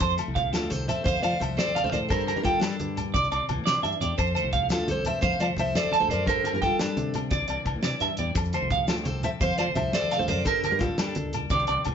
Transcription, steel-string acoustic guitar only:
0.53 F4 A4
0.70 A4 C5
0.88 C5 E5
1.04 C5 F5
1.22 D5 F5
1.40 C5 E5
1.57 A4 D5
1.84 A4 C5
1.92 A#4 D5
2.09 A4 C5
2.36 G4 A#4
2.43 F4 A4
2.60 D4 A4
4.71 F4 A4
4.89 A4 C5
5.06 C5 E5
5.21 C5 F5
5.40 D5 F5
5.59 C5 E5
5.76 A4 D5
6.00 A4 C5
6.11 A#4 D5
6.28 A4 C5
6.55 G4 A#4
6.63 F4 A4
6.81 D4 A4
8.89 F4 A4
9.04 A4 C5
9.24 C5 E5
9.41 C5 F5
9.58 D5 F5
9.75 C5 E5
9.94 A4 D5
10.18 A4 C5
10.28 A#4 D5
10.45 A4 C5
10.71 G4 A#4
10.79 F4 A4
10.98 D4 A4

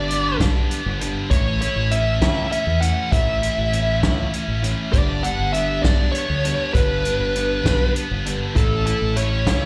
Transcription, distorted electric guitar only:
Already playing: G2 D3 D4
0.09 B3
0.39 D4
0.69 B3
1.00 D3
1.30 A2
1.61 E4
1.92 C#4
2.21 E4
2.51 C#4
2.81 E3
3.11 A2
3.42 E4
3.71 C#4
4.03 E4
4.33 C#4
4.64 E3
4.94 G2
5.24 D4
5.55 B3
5.85 D4
6.15 B3
6.45 D3
6.75 G2
7.06 D4
7.36 B3
7.65 D4
7.96 B3
8.25 D3
8.55 A2
8.86 E4
9.17 C#4
9.47 E4

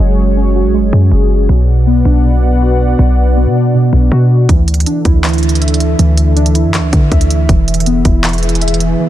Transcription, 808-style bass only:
0.00 F#1
0.65 A1
0.79 F#1
0.93 F#2
1.12 F#1
1.49 B1
2.05 B1
2.99 B1
3.46 B2
3.93 B1
4.12 B2
4.49 D2
5.05 D2
5.99 D2
6.65 F#2
6.79 D2
6.93 D3
7.12 D2
7.49 E1
8.05 E1

